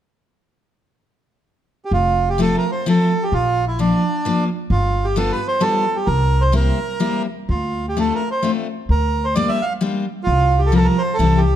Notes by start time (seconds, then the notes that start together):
1.85 G4
1.91 F1 F4
2.29 G4
2.38 F3 A3 C4 F4 A4
2.58 A#4
2.72 C5
2.86 F3 A3 C4 F4 A4
3.23 G4
3.32 A#1 F4
3.68 E4
3.79 F3 A#3 D4 F4
4.25 F3 A#3 D4 F4
4.70 G1 F4
5.05 G4
5.16 G3 B3 D4 F4 A4
5.32 B4
5.48 C5
5.60 G3 B3 D4 F4 A4
5.96 G4
6.07 C2 A#4
6.41 C5
6.52 G3 A#3 C4 E4 A#4
7.00 G3 A#3 C4 E4
7.49 D2 F4
7.89 G4
7.97 A3 C4 D4 F4 A4
8.15 A#4
8.31 C5
8.43 A3 C4 D4 F4
8.89 D2 A#4
9.24 C5
9.35 G3 A#3 D4 F4 D5
9.49 E5
9.62 F5
9.81 G3 A#3 D4 F4
10.24 C2 F4
10.59 G4
10.66 A4
10.72 F3 G3 C4 F4 A#4
10.77 A4
10.85 A#4
10.98 C5
11.14 A4
11.19 C2 E3 G3 C4 E4
11.37 G4